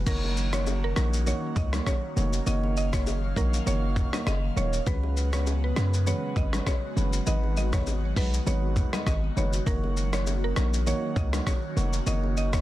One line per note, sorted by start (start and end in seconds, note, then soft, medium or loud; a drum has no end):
0.06 0.93 F#1 loud
0.06 4.83 D#3 medium
0.06 12.61 F#3 medium
0.06 0.49 A#3 medium
0.06 4.83 A#3 medium
0.06 4.83 C#4 medium
0.06 0.49 D#4 medium
0.06 0.49 F#4 medium
0.06 2.44 F#4 loud
0.06 0.33 A#4 loud
0.06 0.49 C#5 loud
0.06 kick loud
0.06 crash medium
0.06 low conga medium
0.06 shaker medium
0.24 high bongo soft
0.37 shaker medium
0.53 0.73 A#3 medium
0.53 0.73 D#4 medium
0.53 0.73 F#4 medium
0.53 0.73 C#5 medium
0.53 0.65 C#5 medium
0.53 cross-stick medium
0.53 shaker medium
0.66 high bongo medium
0.66 shaker medium
0.84 0.95 A#4 medium
0.96 1.33 A#1 loud
0.96 1.18 A#3 medium
0.96 1.18 D#4 medium
0.96 1.18 F#4 medium
0.96 1.11 A#4 medium
0.96 1.19 C#5 medium
0.96 cross-stick loud
0.96 shaker medium
1.13 shaker medium
1.26 1.69 A#3 medium
1.26 1.69 D#4 medium
1.26 1.69 F#4 medium
1.26 1.69 C#5 loud
1.26 1.41 C#5 medium
1.26 low conga medium
1.26 shaker medium
1.56 1.80 C#2 medium
1.56 1.71 D#5 medium
1.56 kick medium
1.56 mid tom medium
1.56 shaker soft
1.73 1.93 A#3 medium
1.73 1.93 D#4 medium
1.73 1.93 F#4 medium
1.73 1.93 C#5 medium
1.73 cross-stick medium
1.73 low bongo medium
1.73 shaker medium
1.86 2.31 C#5 medium
1.86 kick loud
1.86 cross-stick medium
1.86 high bongo medium
1.86 shaker medium
2.16 2.40 F1 loud
2.16 2.38 A#3 medium
2.16 2.38 D#4 medium
2.16 2.38 F#4 medium
2.16 2.39 C#5 medium
2.16 low bongo medium
2.16 low conga medium
2.16 shaker medium
2.33 shaker medium
2.46 3.33 F#1 loud
2.46 2.89 A#3 medium
2.46 2.89 D#4 medium
2.46 2.89 F#4 medium
2.46 2.89 C#5 loud
2.46 2.61 D#5 medium
2.46 4.84 F5 loud
2.46 low conga medium
2.46 shaker medium
2.64 high bongo medium
2.77 2.91 D#5 medium
2.77 shaker medium
2.93 3.13 A#3 medium
2.93 3.13 D#4 medium
2.93 3.13 F#4 medium
2.93 3.13 C#5 medium
2.93 3.05 C#5 medium
2.93 kick loud
2.93 cross-stick medium
2.93 shaker medium
3.06 high bongo medium
3.06 shaker medium
3.36 3.60 A#1 loud
3.36 3.58 A#3 medium
3.36 3.58 D#4 medium
3.36 3.58 F#4 medium
3.36 3.51 A#4 medium
3.36 3.58 C#5 medium
3.36 kick loud
3.36 shaker medium
3.54 shaker medium
3.66 4.03 F#1 loud
3.66 4.09 A#3 loud
3.66 4.09 D#4 medium
3.66 4.09 F#4 medium
3.66 4.09 C#5 loud
3.66 3.81 C#5 medium
3.66 low conga medium
3.66 shaker medium
3.96 kick medium
3.96 mid tom medium
3.96 shaker soft
4.13 4.33 A#3 medium
4.13 4.33 D#4 medium
4.13 4.33 F#4 medium
4.13 4.33 C#5 medium
4.13 4.25 D#5 medium
4.13 cross-stick loud
4.13 low bongo medium
4.13 shaker medium
4.27 4.50 F#1 medium
4.27 4.41 D#5 medium
4.27 cross-stick medium
4.27 high bongo medium
4.27 shaker medium
4.56 4.80 D#1 loud
4.56 4.78 A#3 medium
4.56 4.78 D#4 medium
4.56 4.78 F#4 medium
4.56 4.79 C#5 medium
4.56 4.71 C#5 medium
4.56 low bongo medium
4.56 low conga medium
4.56 shaker medium
4.73 shaker medium
4.86 5.73 C#2 loud
4.86 7.24 C#3 medium
4.86 5.29 G#3 medium
4.86 9.62 G#3 medium
4.86 7.24 B3 medium
4.86 5.29 C#4 medium
4.86 12.61 F#4 loud
4.86 5.29 F#4 medium
4.86 5.29 B4 loud
4.86 5.13 B4 loud
4.86 kick loud
4.86 low conga medium
4.86 shaker medium
5.03 high bongo soft
5.17 shaker medium
5.33 5.53 G#3 medium
5.33 5.53 C#4 medium
5.33 5.53 F#4 medium
5.33 5.53 B4 medium
5.33 5.45 C#5 medium
5.33 cross-stick loud
5.33 shaker medium
5.46 high bongo medium
5.46 shaker medium
5.64 5.75 B4 medium
5.76 6.13 F#2 medium
5.76 5.98 G#3 medium
5.76 5.98 C#4 medium
5.76 5.98 F#4 medium
5.76 5.98 B4 medium
5.76 5.91 B4 medium
5.76 cross-stick loud
5.76 shaker medium
5.93 shaker medium
6.06 6.49 G#3 loud
6.06 6.49 C#4 medium
6.06 6.49 F#4 medium
6.06 6.49 B4 loud
6.06 6.21 C#5 medium
6.06 low conga medium
6.06 shaker medium
6.36 6.60 G#1 medium
6.36 6.51 D#5 medium
6.36 kick medium
6.36 mid tom medium
6.36 shaker soft
6.53 6.73 G#3 medium
6.53 6.73 C#4 medium
6.53 6.73 F#4 medium
6.53 6.73 B4 medium
6.53 cross-stick medium
6.53 low bongo medium
6.53 shaker medium
6.66 7.11 C#5 medium
6.66 kick loud
6.66 cross-stick medium
6.66 high bongo medium
6.66 shaker medium
6.96 7.20 F#1 loud
6.96 7.18 G#3 medium
6.96 7.18 C#4 medium
6.96 7.18 F#4 medium
6.96 7.19 B4 medium
6.96 low bongo medium
6.96 low conga medium
6.96 shaker medium
7.13 shaker medium
7.26 8.13 G#1 loud
7.26 12.61 D#3 medium
7.26 7.69 G#3 loud
7.26 9.64 B3 medium
7.26 7.69 D#4 medium
7.26 7.69 F#4 medium
7.26 7.69 B4 loud
7.26 7.41 D#5 medium
7.26 low conga medium
7.26 shaker medium
7.43 high bongo soft
7.57 7.71 D#5 medium
7.57 low bongo medium
7.57 shaker medium
7.73 7.93 G#3 medium
7.73 7.93 D#4 medium
7.73 7.93 F#4 medium
7.73 7.93 B4 medium
7.73 7.85 C#5 medium
7.73 kick loud
7.73 cross-stick loud
7.73 mid tom loud
7.73 low bongo medium
7.73 shaker medium
7.86 high bongo medium
7.86 shaker medium
8.16 8.40 B1 medium
8.16 8.38 G#3 medium
8.16 8.38 D#4 medium
8.16 8.38 F#4 medium
8.16 8.39 B4 medium
8.16 8.31 B4 medium
8.16 kick loud
8.16 open hi-hat medium
8.16 shaker medium
8.33 shaker medium
8.46 8.83 G#1 loud
8.46 8.89 G#3 loud
8.46 8.89 D#4 medium
8.46 8.89 F#4 medium
8.46 8.89 B4 loud
8.46 8.61 C#5 medium
8.46 low conga medium
8.46 shaker medium
8.76 kick medium
8.76 mid tom medium
8.76 shaker soft
8.93 9.13 G#3 medium
8.93 9.13 D#4 medium
8.93 9.13 F#4 medium
8.93 9.13 B4 medium
8.93 9.05 D#5 medium
8.93 cross-stick medium
8.93 low bongo medium
8.93 shaker medium
9.06 9.30 G#1 loud
9.06 9.21 D#5 medium
9.06 kick loud
9.06 cross-stick medium
9.06 high bongo medium
9.06 shaker medium
9.36 9.60 F#1 medium
9.36 9.58 G#3 medium
9.36 9.58 D#4 medium
9.36 9.58 F#4 medium
9.36 9.58 B4 medium
9.36 9.51 C#5 medium
9.36 low bongo medium
9.36 low conga medium
9.36 shaker medium
9.53 shaker medium
9.66 10.53 F#1 loud
9.66 10.09 A#3 medium
9.66 12.61 A#3 medium
9.66 12.61 C#4 medium
9.66 10.09 D#4 medium
9.66 10.09 F#4 medium
9.66 9.93 A#4 loud
9.66 10.09 C#5 loud
9.66 kick loud
9.66 low conga medium
9.66 shaker medium
9.84 high bongo soft
9.97 shaker medium
10.13 10.33 A#3 medium
10.13 10.33 D#4 medium
10.13 10.33 F#4 medium
10.13 10.33 C#5 medium
10.13 10.25 C#5 medium
10.13 cross-stick medium
10.13 shaker medium
10.26 high bongo medium
10.26 shaker medium
10.44 10.55 A#4 medium
10.56 10.93 A#1 loud
10.56 10.78 A#3 medium
10.56 10.78 D#4 medium
10.56 10.78 F#4 medium
10.56 10.71 A#4 medium
10.56 10.78 C#5 medium
10.56 cross-stick loud
10.56 shaker medium
10.73 shaker medium
10.86 11.29 A#3 loud
10.86 11.29 D#4 medium
10.86 11.29 F#4 medium
10.86 11.29 C#5 loud
10.86 11.01 C#5 medium
10.86 low conga medium
10.86 shaker medium
11.16 11.40 C#2 medium
11.16 11.31 D#5 medium
11.16 kick medium
11.16 mid tom medium
11.16 shaker soft
11.33 11.53 A#3 medium
11.33 11.53 D#4 medium
11.33 11.53 F#4 medium
11.33 11.53 C#5 medium
11.33 cross-stick medium
11.33 low bongo medium
11.33 shaker medium
11.46 11.91 C#5 medium
11.46 kick loud
11.46 cross-stick medium
11.46 high bongo medium
11.46 shaker medium
11.76 12.00 F1 loud
11.76 11.98 A#3 medium
11.76 11.98 D#4 medium
11.76 11.98 F#4 medium
11.76 11.98 C#5 medium
11.76 low bongo medium
11.76 low conga medium
11.76 shaker medium
11.93 shaker medium
12.06 12.61 F#1 loud
12.06 12.49 A#3 medium
12.06 12.49 D#4 medium
12.06 12.49 F#4 medium
12.06 12.49 C#5 loud
12.06 12.21 D#5 medium
12.06 low conga medium
12.06 shaker medium
12.23 high bongo soft
12.37 12.51 D#5 medium
12.37 shaker medium
12.53 12.61 A#3 medium
12.53 12.61 D#4 medium
12.53 12.61 F#4 medium
12.53 12.61 C#5 medium
12.53 kick loud
12.53 cross-stick medium
12.53 shaker medium